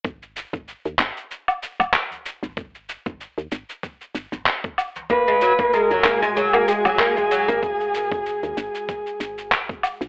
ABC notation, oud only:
X:1
M:4/4
L:1/16
Q:"Swing 16ths" 1/4=95
K:G#m
V:1 name="Oud" clef=bass
z16 | z16 | A, G, F, A, G, F, A, G, F, A, G, F, A, G, F, A, | z16 |]